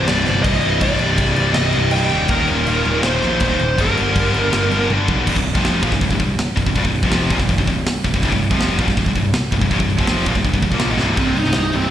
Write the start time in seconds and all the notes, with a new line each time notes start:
Already playing: C2 G2 C3
0.03 C2 G2
0.08 C1 C2 D5, snare, crash
0.13 G2
0.19 C2 G2
0.26 G1 C2 G2, snare, crash
0.34 C2 G2
0.42 C1 C2 G2 D#5, kick, crash
0.47 C2 G2 C3
0.58 C2 G2 C3, crash
0.64 C1 C2 G2
0.73 C2 G2
0.81 C1 C2 G2 C3 D5, kick, crash
0.85 C3
0.90 C2 G2
0.97 C1 C2 G2, crash
1.05 C2 G2
1.13 C2 G2
1.18 C1 C2 G2, kick, crash
1.28 C2 G2
1.35 C1 C2 G2 C3, crash
1.39 C2 G2
1.44 C2
1.50 C2 G2 D#5
1.54 C1 C2 G2, snare, crash
1.65 C2 G2
1.72 C1 C2 G2, crash
1.81 C2 G2
1.87 C2 G2, crash
1.92 C1 C3 G5
1.96 C2 G2
2.04 C2 G2
2.10 D#1 D#2 A#2 D#3, crash
2.15 D#2 D#3
2.19 A#2
2.27 D#1 D#2 A#2 A#4, kick, crash
2.34 D#2 A#2
2.43 D#2 A#2
2.48 D#1 D#2 A#2, crash
2.57 D#2 A#2
2.66 D#1 D#2 A#2 D#3, crash
2.73 D#2 A#2
2.81 D#2 A#2, crash
2.86 D#1 D#2 A#2
2.97 D#2 A#2
3.03 D#1 D#2 A#2 C5, snare, crash
3.13 D#2 A#2
3.21 A#1 D#2 A#2 D#3, snare, crash
3.29 D#2 A#2
3.36 D#2 A#2, crash
3.41 D#1 D#2 D#3 C5, kick
3.45 A#2
3.52 D#2 A#2
3.59 D#1, crash
3.78 G1 G2 D3 G3 A#4, kick, crash
3.87 G2 D3
3.94 G1 G2 D3, crash
4.02 G2 D3
4.10 G2 D3
4.15 G1 G2, kick, crash
4.20 D3
4.26 G2 D3
4.33 G1 G2 D3 G3, crash
4.41 G2 D3
4.48 G2 D3
4.52 G1 G2, snare, crash
4.58 D3
4.65 G2 D3
4.71 G1 G2 D3, crash
4.81 G2 D3
4.88 G1 G2 D3 G3, high tom
4.96 G2 D3
5.04 G2 D3
5.08 B1 G2 G3, kick
5.13 D3
5.19 G2 D3
5.27 C1 C2 G2, kick, crash
5.36 C1 C2 G2, kick
5.46 open hi-hat
5.55 F1 F2 C3 F3, kick
5.65 snare, open hi-hat
5.83 A#1 A#2 F3, kick, open hi-hat
5.92 C1 C2 G2, kick, snare
6.01 C1 C2 G2, kick, open hi-hat
6.11 C1 C2 G2, kick
6.20 C1 C2 G2, kick, open hi-hat
6.39 snare, open hi-hat
6.56 C1 C2 G2, kick, open hi-hat
6.67 C1 C2 G2, kick
6.76 C1 C2 G2, kick, open hi-hat
6.84 C1 C2 G2, kick
6.94 open hi-hat
7.03 F1 F2 C3 F3, kick
7.11 snare, open hi-hat
7.30 A#1 A#2 F3, kick, open hi-hat
7.39 C1 C2 G2, kick, snare
7.49 C1 C2 G2, kick, open hi-hat
7.58 C1 C2 G2, kick
7.67 C1 C2 G2, kick, open hi-hat
7.86 snare, open hi-hat
8.04 C1 C2 G2, kick, open hi-hat
8.14 C1 C2 G2, kick
8.22 C1 C2 G2, kick, open hi-hat
8.32 C1 C2 G2, kick
8.42 open hi-hat
8.51 F1 F2 C3 F3, kick
8.60 snare, open hi-hat
8.79 A#1 A#2 F3, kick, open hi-hat
8.88 C1 C2 G2, kick, snare
8.97 C1 C2 G2, kick, open hi-hat
9.06 C1 C2 G2, kick
9.16 C1 C2 G2, kick, open hi-hat
9.34 snare, open hi-hat
9.52 C1 C2 G2, kick, open hi-hat
9.61 C1 C2 G2, kick
9.71 C1 C2 G2, kick, open hi-hat
9.80 C1 C2 G2, kick
9.89 open hi-hat
9.99 F1 F2 C3 F3, kick
10.07 snare, open hi-hat
10.26 A#1 A#2 F3, kick, open hi-hat
10.35 C1 C2 G2, kick
10.44 C1 C2 G2, kick, open hi-hat
10.53 C1 C2 G2, kick
10.62 C1 C2 G2, kick, open hi-hat
10.72 A#1 A#2 F3 A#3, kick
10.79 snare, open hi-hat
10.90 G#1 G#2 D#3
10.99 C1 C2 G2 C3, snare
11.17 C1 C2 G2 C3 C4, kick, open hi-hat
11.35 C1 C2 G2 D#4, open hi-hat
11.44 C2 G2, snare
11.53 C1 C2 G2 C3, snare, open hi-hat
11.57 D#4
11.72 C1 C2 G2 C3 C4, open hi-hat
11.82 C2 G2